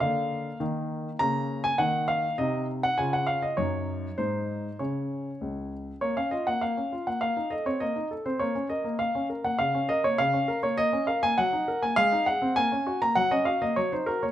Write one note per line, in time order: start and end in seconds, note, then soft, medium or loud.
0.00 0.49 D3 medium
0.00 0.56 A#3 soft
0.00 0.60 F5 medium
0.60 1.08 D#3 soft
0.60 1.16 A#3 soft
1.19 1.67 C#3 medium
1.19 1.75 A#3 soft
1.19 1.64 A#5 medium
1.64 1.79 G#5 medium
1.78 2.27 D#3 medium
1.78 2.35 A#3 soft
1.78 2.08 F#5 medium
2.08 2.35 F5 medium
2.38 2.86 C3 medium
2.38 2.94 D#4 soft
2.38 2.65 D#5 medium
2.83 2.98 F#5 medium
2.98 3.46 C#3 soft
2.98 3.54 F4 soft
2.98 3.13 G#5 medium
3.13 3.28 F#5 medium
3.27 3.42 F5 medium
3.42 3.57 D#5 medium
3.57 4.06 F#2 soft
3.57 4.14 D#4 soft
3.57 4.18 C#5 medium
4.18 4.67 G#2 soft
4.18 4.75 D#4 soft
4.18 4.79 C5 medium
4.79 5.29 C#3 soft
4.79 5.98 C#4 soft
4.79 5.72 C#5 soft
5.41 5.90 C#2 soft
6.01 6.16 A#3 soft
6.01 6.17 C#5 medium
6.17 6.33 C#4 soft
6.17 6.32 F5 medium
6.31 6.48 F4 soft
6.31 6.47 D#5 medium
6.47 6.61 A#3 soft
6.47 6.62 F#5 medium
6.61 6.77 A#3 soft
6.61 7.06 F5 medium
6.77 6.93 C#4 soft
6.92 7.08 F4 soft
7.07 7.20 A#3 soft
7.07 7.22 F#5 medium
7.21 7.36 A#3 soft
7.21 7.51 F5 medium
7.37 7.52 D#4 soft
7.50 7.67 A4 soft
7.50 7.66 D#5 medium
7.66 7.82 C4 soft
7.66 7.81 C#5 medium
7.80 7.96 A#3 soft
7.80 8.07 D#5 medium
7.96 8.11 D#4 soft
8.11 8.26 A4 soft
8.26 8.40 C4 soft
8.26 8.40 C5 medium
8.39 8.55 A#3 medium
8.39 8.67 C#5 medium
8.55 8.71 C#4 soft
8.69 8.86 A#4 soft
8.69 8.99 D#5 medium
8.84 8.98 A#3 soft
8.99 9.14 A#3 soft
8.99 9.26 F5 medium
9.15 9.30 C#4 soft
9.30 9.45 A#4 soft
9.44 9.59 A#3 soft
9.44 9.59 F#5 medium
9.59 9.74 C#3 soft
9.59 9.89 F5 medium
9.75 9.90 C#4 soft
9.89 10.05 A#4 soft
9.89 10.04 D#5 medium
10.04 10.19 A#3 soft
10.04 10.19 C#5 medium
10.18 10.33 C#3 soft
10.18 10.59 F5 medium
10.34 10.49 C#4 soft
10.48 10.64 A#4 medium
10.63 10.76 A#3 soft
10.63 10.78 C#5 medium
10.77 10.92 A#3 medium
10.77 11.04 D#5 medium
10.93 11.08 C#4 soft
11.07 11.23 A#4 soft
11.07 11.22 F5 medium
11.23 11.38 A#3 medium
11.23 11.38 G#5 loud
11.38 11.52 F#3 medium
11.38 11.82 F#5 medium
11.53 11.68 D#4 soft
11.68 11.83 A#4 medium
11.82 11.97 A#3 soft
11.82 11.97 G#5 medium
11.96 12.12 G#3 medium
11.96 12.26 F5 loud
12.12 12.28 D#4 soft
12.26 12.43 G#4 soft
12.26 12.56 F#5 medium
12.42 12.57 C4 medium
12.56 12.71 A#3 medium
12.56 13.01 G#5 medium
12.72 12.88 C#4 soft
12.87 13.02 F#4 medium
13.02 13.17 A#3 soft
13.02 13.17 A#5 medium
13.15 13.31 F#3 medium
13.15 13.31 F#5 medium
13.31 13.47 C#4 soft
13.31 13.47 D#5 medium
13.45 13.63 F#4 soft
13.45 13.61 F5 medium
13.62 13.77 A#3 soft
13.62 13.77 D#5 medium
13.76 13.92 F#3 medium
13.76 13.92 C#5 medium
13.92 14.09 D#4 soft
13.92 14.08 C5 medium
14.06 14.24 F#4 soft
14.06 14.23 A#4 medium
14.23 14.32 A#3 soft
14.23 14.32 C#5 medium